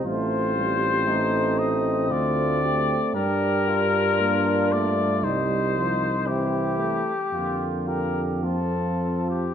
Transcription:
<<
  \new Staff \with { instrumentName = "Cornet" } { \time 3/4 \key g \minor \tempo 4 = 58 c''4. ees''8 d''4 | bes'4. d''8 c''4 | g'4. bes'16 r16 a'8. g'16 | }
  \new Staff \with { instrumentName = "Flugelhorn" } { \time 3/4 \key g \minor f'4 ees'4 f'8 g'8 | g'8 f'4. ees'4 | e'8. r16 f'8 g'8 f'4 | }
  \new Staff \with { instrumentName = "Euphonium" } { \time 3/4 \key g \minor c'2. | d'2 ees'4 | c'8 a8 bes4 c'4 | }
  \new Staff \with { instrumentName = "Euphonium" } { \clef bass \time 3/4 \key g \minor a8 g8 a4 a4 | g4 bes8 a8 g8 f8 | e8. r16 d4 f4 | }
  \new Staff \with { instrumentName = "Tuba" } { \clef bass \time 3/4 \key g \minor a,,2 d,4 | g,2 c,4~ | c,8. r16 f,2 | }
>>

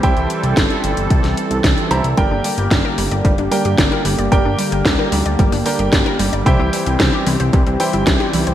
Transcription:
<<
  \new Staff \with { instrumentName = "Grand piano" } { \time 4/4 \key g \dorian \tempo 4 = 112 <e' g' c'' g''>2~ <e' g' c'' g''>8 r4 <e' g' c'' bes''>8 | <d' g' bes' g''>2~ <d' g' bes' g''>8 <d' g' bes' g''>4. | <d' g' bes' g''>2~ <d' g' bes' g''>8 <d' g' bes' g''>4. | <e' g' c'' g''>2~ <e' g' c'' g''>8 <e' g' c'' g''>4. | }
  \new Staff \with { instrumentName = "Analog synth pad" } { \time 4/4 \key g \dorian << { <e c' a'>1 | <d bes g'>1~ | <d bes g'>1 | <e c' g'>1 | } \\ { g1 | g1~ | g1~ | g1 | } >> }
  \new Staff \with { instrumentName = "Synth arpeggio sound" } { \time 4/4 \key g \dorian r1 | g16 d'16 g16 g'16 g16 bes'16 g16 d''16 g16 d'16 g16 g'16 g16 bes'16 g16 d''16 | g16 d'16 g16 g'16 g16 bes'16 g16 d''16 g16 d'16 g16 g'16 g16 bes'16 g16 d''16 | e16 c'16 e16 e'16 e16 g'16 e16 c''16 e16 c'16 e16 e'16 e16 g'16 e16 c''16 | }
  \new Staff \with { instrumentName = "Analog synth bass" } { \clef bass \time 4/4 \key g \dorian c,16 c,16 r16 c,16 g,,16 r16 g,,16 g,,16 c,16 c,16 r16 c,16 c,16 r16 c,16 c,16 | g,,16 g,,16 r16 g,,16 g,,16 r16 g,,16 g,,16 g,,16 g,,16 r16 g,16 g,,16 r16 g,,16 g,,16 | g,,16 g,,16 r16 g,,16 d,16 r16 d,16 d,16 g,,16 g,,16 r16 g,,16 g,,16 r16 g,,16 g,,16 | c,16 c,16 r16 c,16 c,16 r16 c,16 c,16 c,16 c,16 r16 g,,16 c,16 r16 c,16 c,16 | }
  \new DrumStaff \with { instrumentName = "Drums" } \drummode { \time 4/4 <hh bd>16 hh16 hh16 hh16 <hh bd sn>16 hh16 hh16 hh16 <hh bd>16 <hh sn>16 hh16 hh16 <hh bd sn>16 hh16 hh16 hh16 | <hh bd>8 hho16 hh16 <hh bd sn>8 hho16 hh16 <hh bd>16 hh16 hho16 hh16 <hh bd sn>16 hh16 hho16 hh16 | <hh bd>8 hho16 hh16 <hh bd sn>8 hho16 hh16 <hh bd>16 hho16 hho16 hh16 <hh bd sn>16 hh16 hho16 hh16 | <hh bd>8 hho16 hh16 <hh bd sn>8 hho16 hh16 <hh bd>16 hh16 hho16 hh16 <hh bd sn>16 hh16 hho16 hh16 | }
>>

